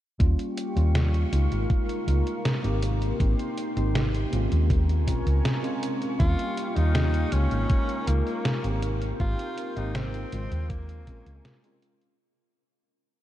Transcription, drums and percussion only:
0.20 kick loud
0.20 closed hi-hat medium
0.39 closed hi-hat soft
0.57 closed hi-hat medium
0.77 closed hi-hat soft
0.95 snare loud
0.95 closed hi-hat medium
1.14 closed hi-hat soft
1.33 closed hi-hat medium
1.52 closed hi-hat soft
1.70 kick loud
1.70 closed hi-hat medium
1.89 closed hi-hat soft
2.08 closed hi-hat loud
2.27 closed hi-hat soft
2.45 snare loud
2.45 closed hi-hat medium
2.64 closed hi-hat soft
2.82 closed hi-hat medium
3.02 closed hi-hat soft
3.20 kick loud
3.20 closed hi-hat medium
3.39 closed hi-hat soft
3.58 closed hi-hat medium
3.77 closed hi-hat soft
3.95 snare loud
3.95 closed hi-hat medium
4.14 closed hi-hat soft
4.33 closed hi-hat medium
4.52 closed hi-hat soft
4.70 kick loud
4.70 closed hi-hat medium
4.89 closed hi-hat soft
5.07 kick medium
5.07 closed hi-hat loud
5.27 closed hi-hat soft
5.45 snare loud
5.45 closed hi-hat medium
5.64 closed hi-hat soft
5.83 closed hi-hat medium
6.02 closed hi-hat soft
6.20 kick loud
6.20 closed hi-hat medium
6.39 closed hi-hat soft
6.58 closed hi-hat medium
6.77 closed hi-hat soft
6.95 snare loud
6.95 closed hi-hat medium
7.14 closed hi-hat soft
7.32 closed hi-hat loud
7.51 closed hi-hat soft
7.70 kick loud
7.70 closed hi-hat medium
7.89 closed hi-hat soft
8.07 closed hi-hat medium
8.27 closed hi-hat soft
8.45 snare loud
8.45 closed hi-hat medium
8.64 closed hi-hat soft
8.82 closed hi-hat medium
9.01 closed hi-hat soft
9.20 kick loud
9.20 closed hi-hat medium
9.39 closed hi-hat soft
9.57 closed hi-hat medium
9.77 closed hi-hat soft
9.95 snare loud
9.95 closed hi-hat medium
10.14 closed hi-hat soft
10.32 closed hi-hat medium
10.52 closed hi-hat soft
10.70 kick loud
10.70 closed hi-hat medium
10.89 closed hi-hat soft
11.07 kick medium
11.07 closed hi-hat medium
11.26 closed hi-hat soft
11.45 snare loud
11.45 closed hi-hat medium
11.64 closed hi-hat soft
11.82 closed hi-hat medium
12.02 closed hi-hat soft

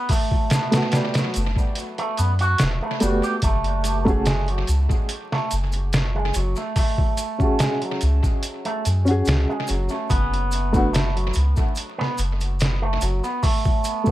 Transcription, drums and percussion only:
0.09 kick loud
0.09 open hi-hat medium
0.09 maracas soft
0.31 kick medium
0.50 snare loud
0.50 closed hi-hat medium
0.50 maracas medium
0.72 snare loud
0.72 closed hi-hat medium
0.72 maracas soft
0.92 snare medium
0.92 closed hi-hat medium
0.92 maracas medium
1.14 snare medium
1.14 closed hi-hat medium
1.14 maracas soft
1.34 closed hi-hat medium
1.34 maracas medium
1.56 kick medium
1.56 maracas soft
1.75 closed hi-hat medium
1.75 maracas medium
1.98 closed hi-hat soft
2.17 closed hi-hat medium
2.17 maracas medium
2.39 closed hi-hat soft
2.39 maracas soft
2.58 snare loud
2.58 closed hi-hat medium
2.58 maracas soft
3.00 closed hi-hat medium
3.00 maracas medium
3.23 maracas soft
3.42 kick loud
3.42 closed hi-hat medium
3.42 maracas soft
3.64 closed hi-hat soft
3.84 closed hi-hat medium
3.84 maracas medium
4.07 kick medium
4.07 maracas soft
4.26 snare loud
4.26 closed hi-hat medium
4.26 maracas soft
4.48 closed hi-hat soft
4.67 closed hi-hat medium
4.67 maracas medium
4.90 kick medium
4.90 maracas soft
5.09 closed hi-hat medium
5.09 maracas soft
5.32 snare soft
5.51 closed hi-hat medium
5.51 maracas medium
5.72 closed hi-hat soft
5.72 maracas soft
5.93 snare loud
5.93 closed hi-hat medium
5.93 maracas soft
6.34 closed hi-hat medium
6.34 maracas medium
6.56 maracas soft
6.76 kick loud
6.76 open hi-hat medium
6.76 maracas soft
6.98 kick medium
7.17 closed hi-hat medium
7.17 maracas medium
7.40 kick medium
7.40 maracas soft
7.59 snare loud
7.59 closed hi-hat medium
7.59 maracas soft
7.82 closed hi-hat soft
8.01 closed hi-hat medium
8.01 maracas medium
8.23 kick medium
8.23 maracas soft
8.43 closed hi-hat medium
8.43 maracas soft
8.65 closed hi-hat soft
8.85 closed hi-hat medium
8.85 maracas medium
9.06 closed hi-hat soft
9.06 maracas soft
9.25 snare loud
9.25 closed hi-hat medium
9.25 maracas soft
9.67 closed hi-hat medium
9.67 maracas medium
9.89 maracas soft
10.10 kick loud
10.10 closed hi-hat medium
10.10 maracas soft
10.34 closed hi-hat soft
10.52 closed hi-hat medium
10.52 maracas medium
10.74 kick medium
10.74 maracas soft
10.94 snare loud
10.94 closed hi-hat medium
10.94 maracas soft
11.17 closed hi-hat soft
11.34 closed hi-hat medium
11.34 maracas medium
11.57 kick medium
11.57 maracas soft
11.76 closed hi-hat medium
11.76 maracas soft
12.01 snare soft
12.18 closed hi-hat medium
12.18 maracas medium
12.41 closed hi-hat soft
12.41 maracas soft
12.59 snare loud
12.59 closed hi-hat medium
12.59 maracas soft
13.01 closed hi-hat medium
13.01 maracas medium
13.24 maracas soft
13.43 kick loud
13.43 open hi-hat medium
13.43 maracas soft
13.65 kick medium
13.65 maracas soft
13.84 closed hi-hat medium
13.84 maracas medium
14.06 kick medium
14.06 maracas soft

